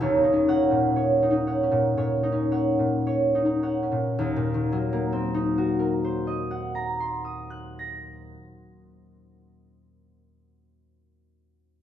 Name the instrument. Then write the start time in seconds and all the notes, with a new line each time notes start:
harp
Already playing: D#4 D#5
0.00 D#1 D#2 C#5
0.24 D#4
0.33 C#4
0.48 C#5 F#5
0.71 A#2
0.96 C#5
1.23 D#4
1.30 D#4
1.47 C#5 F#5
1.63 C#4
1.72 A#2
1.97 A#2 C#5
2.23 D#4
2.32 C#4
2.52 C#5 F#5
2.79 A#2
3.07 C#5
3.35 D#4
3.45 D#4
3.63 C#5 F#5
3.83 C#4
3.92 A#2
4.19 D#2
4.36 A#2
4.54 D#3
4.72 F#3
4.93 A#3
5.13 C4
5.34 D#4
5.58 F#4
5.79 A#4
6.04 C5
6.27 D#5
6.51 F#5
6.75 A#5
7.00 C6
7.25 D#6
7.50 F#6
7.79 A#6